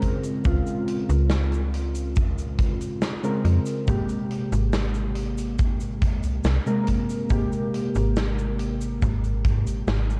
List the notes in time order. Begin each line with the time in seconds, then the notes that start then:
Already playing: C#3 G#3 C4 A#4
0.02 kick, closed hi-hat
0.23 closed hi-hat, cabasa
0.44 C#2 C#3 G#3 C4 F4, kick, closed hi-hat, cabasa
0.67 closed hi-hat, cabasa
0.88 closed hi-hat
1.09 C#2, closed hi-hat, cabasa
1.30 snare, closed hi-hat, cabasa
1.52 closed hi-hat, cabasa
1.74 closed hi-hat
1.95 closed hi-hat, cabasa
2.16 kick, closed hi-hat, cabasa
2.38 closed hi-hat, cabasa
2.59 kick, closed hi-hat
2.81 closed hi-hat, cabasa
3.02 snare, closed hi-hat, cabasa
3.23 C#3 G#3 C4 A#4, closed hi-hat, cabasa
3.45 F2, closed hi-hat
3.66 closed hi-hat, cabasa
3.86 G#1 C3 G#3 A#3 G4, kick, closed hi-hat, cabasa
4.09 closed hi-hat, cabasa
4.31 closed hi-hat
4.52 G#1, closed hi-hat, cabasa
4.73 snare, closed hi-hat, cabasa
4.94 closed hi-hat, cabasa
5.15 closed hi-hat
5.38 closed hi-hat, cabasa
5.58 kick, closed hi-hat, cabasa
5.80 closed hi-hat, cabasa
6.01 kick, closed hi-hat
6.23 C2, closed hi-hat, cabasa
6.44 C2, snare, closed hi-hat, cabasa
6.66 C3 G#3 A#3 A#4, closed hi-hat, cabasa
6.87 kick, closed hi-hat
7.09 closed hi-hat, cabasa
7.29 G#1 C3 G#3 A#3 G4, kick, closed hi-hat, cabasa
7.52 closed hi-hat, cabasa
7.74 closed hi-hat
7.95 G#1, closed hi-hat, cabasa
8.16 snare, closed hi-hat, cabasa
8.38 closed hi-hat, cabasa
8.59 closed hi-hat
8.81 closed hi-hat, cabasa
9.02 G#1, kick, closed hi-hat, cabasa
9.24 closed hi-hat, cabasa
9.45 G#2, kick, closed hi-hat
9.67 G#1, closed hi-hat, cabasa
9.88 G#1, snare, closed hi-hat, cabasa
10.10 closed hi-hat, cabasa